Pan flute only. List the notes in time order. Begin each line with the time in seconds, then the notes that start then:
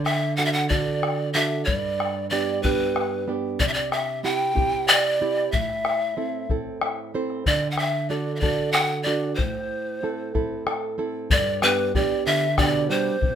0.05 E5
0.37 F#5
0.45 E5
0.53 F#5
0.69 D5
1.34 E5
1.65 D5
2.30 D5
2.63 B4
3.60 D5
3.68 E5
3.74 D5
3.92 E5
4.24 G5
4.88 D5
5.52 E5
7.47 D5
7.71 F#5
7.78 E5
8.10 D5
8.36 D5 E5
8.72 F#5
9.03 D5
9.35 C5
11.31 D5
11.63 B4
11.96 D5
12.26 E5
12.58 D5
12.90 C5